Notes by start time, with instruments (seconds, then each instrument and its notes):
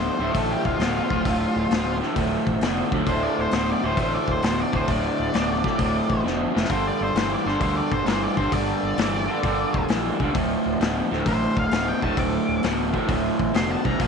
Already playing: overdriven electric guitar D2 B2, tonewheel organ F3 D4 C5 E5, lead electric guitar C5
0.19 fingered electric bass D1, overdriven electric guitar D2 A2
0.34 fingered electric bass A1, overdriven electric guitar D2 A2, lead electric guitar A4, kick, open hi-hat
0.51 lead electric guitar G4
0.65 fingered electric bass D1, lead electric guitar F4, kick
0.79 fingered electric bass D1, overdriven electric guitar D2 B2, snare, open hi-hat
1.10 fingered electric bass D1, overdriven electric guitar D2 A2, kick
1.25 fingered electric bass D1, overdriven electric guitar D2 A2, kick, open hi-hat
1.56 fingered electric bass D1
1.71 fingered electric bass D1, overdriven electric guitar D2 B2, snare, open hi-hat
2.01 overdriven electric guitar D2 A2, snare
2.16 fingered electric bass D1, overdriven electric guitar D2 A2, kick, open hi-hat
2.47 fingered electric bass A1, kick
2.61 fingered electric bass F1, overdriven electric guitar D2 B2, snare, open hi-hat
2.92 fingered electric bass D2, overdriven electric guitar D2 A2, kick
3.06 fingered electric bass D1, overdriven electric guitar D2 A2, tonewheel organ D4 E4 F4 C5, lead electric guitar C5, kick, open hi-hat
3.23 lead electric guitar D5
3.38 fingered electric bass D1, lead electric guitar C5
3.51 fingered electric bass D1, overdriven electric guitar D2 B2, snare, open hi-hat
3.56 lead electric guitar C5
3.71 lead electric guitar D5
3.83 fingered electric bass D1, overdriven electric guitar D2 A2, lead electric guitar C5
3.97 fingered electric bass A1, overdriven electric guitar D2 A2, lead electric guitar C5, kick, open hi-hat
4.15 lead electric guitar D5
4.28 fingered electric bass D1, lead electric guitar C5, kick
4.42 fingered electric bass D1, overdriven electric guitar D2 B2, lead electric guitar C5, snare, open hi-hat
4.60 lead electric guitar D5
4.73 fingered electric bass D1, overdriven electric guitar D2 A2, lead electric guitar C5, kick
4.87 fingered electric bass D1, overdriven electric guitar D2 A2, lead electric guitar D5, kick, open hi-hat
5.19 fingered electric bass D1
5.33 fingered electric bass D1, overdriven electric guitar D2 B2, snare, open hi-hat
5.64 overdriven electric guitar D2 A2, kick, snare
5.79 fingered electric bass D1, overdriven electric guitar D2 A2, kick, open hi-hat
6.10 fingered electric bass A1, kick
6.24 fingered electric bass F1, overdriven electric guitar D2 B2, snare
6.54 fingered electric bass F1, overdriven electric guitar D2 A2, snare
6.64 snare
6.69 fingered electric bass G1, overdriven electric guitar G2 D3, tonewheel organ G3 A#3 F4 A4, lead electric guitar C5, kick, open hi-hat
6.87 lead electric guitar D5
7.01 fingered electric bass G1, lead electric guitar C5
7.15 fingered electric bass G1, overdriven electric guitar G2 E3, lead electric guitar C5, snare, open hi-hat
7.34 lead electric guitar D5
7.46 fingered electric bass G1, overdriven electric guitar G2 D3, lead electric guitar C5, snare
7.60 fingered electric bass D2, overdriven electric guitar G2 D3, lead electric guitar C5, kick, open hi-hat
7.77 lead electric guitar D5
7.91 fingered electric bass G1, lead electric guitar C5, kick
8.06 fingered electric bass G1, overdriven electric guitar G2 E3, lead electric guitar C5, snare, open hi-hat
8.24 lead electric guitar D5
8.37 fingered electric bass G1, overdriven electric guitar G2 D3, lead electric guitar C5, kick
8.52 fingered electric bass G1, overdriven electric guitar G2 D3, lead electric guitar D5, kick, open hi-hat
8.83 fingered electric bass G1
8.97 fingered electric bass G1, overdriven electric guitar G2 E3, snare, open hi-hat
9.28 overdriven electric guitar G2 D3
9.43 fingered electric bass G1, overdriven electric guitar G2 D3, kick, open hi-hat
9.74 fingered electric bass D1, kick
9.88 fingered electric bass A#1, overdriven electric guitar G2 E3, snare, open hi-hat
10.19 fingered electric bass C#2, overdriven electric guitar G2 D3, kick
10.34 fingered electric bass D1, overdriven electric guitar D2 A2, tonewheel organ E3 F3 D4 C5, kick, open hi-hat
10.66 fingered electric bass D1
10.80 fingered electric bass D1, overdriven electric guitar D2 B2, snare, open hi-hat
11.11 fingered electric bass D1, overdriven electric guitar D2 A2, snare
11.26 fingered electric bass A1, overdriven electric guitar D2 A2, lead electric guitar C5, kick, open hi-hat
11.56 fingered electric bass D1, lead electric guitar F5, kick
11.71 fingered electric bass D1, overdriven electric guitar D2 B2, snare, open hi-hat
11.89 lead electric guitar G5
12.01 fingered electric bass D1, overdriven electric guitar D2 A2, lead electric guitar A5, kick
12.17 fingered electric bass D1, overdriven electric guitar D2 A2, lead electric guitar D6, kick, open hi-hat
12.49 fingered electric bass D1
12.63 fingered electric bass D1, overdriven electric guitar D2 B2, snare, open hi-hat
12.93 overdriven electric guitar D2 A2, kick
13.08 fingered electric bass D1, overdriven electric guitar D2 A2, kick, open hi-hat
13.39 fingered electric bass A1, kick
13.54 fingered electric bass F1, overdriven electric guitar D2 B2, lead electric guitar C6, snare, open hi-hat
13.70 lead electric guitar A5
13.85 fingered electric bass C2, overdriven electric guitar D2 A2, lead electric guitar A#5, kick
13.99 fingered electric bass A#1, overdriven electric guitar A#2 F3, tonewheel organ A3 D#4 F#4 B4, lead electric guitar A5, kick, open hi-hat